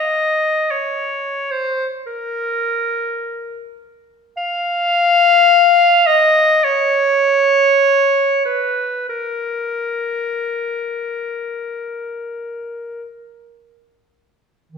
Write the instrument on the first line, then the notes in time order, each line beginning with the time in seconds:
clarinet
Already playing: D#5
0.71 C#5
1.51 C5
2.06 A#4
4.37 F5
6.06 D#5
6.64 C#5
8.45 B4
9.09 A#4
14.72 D#3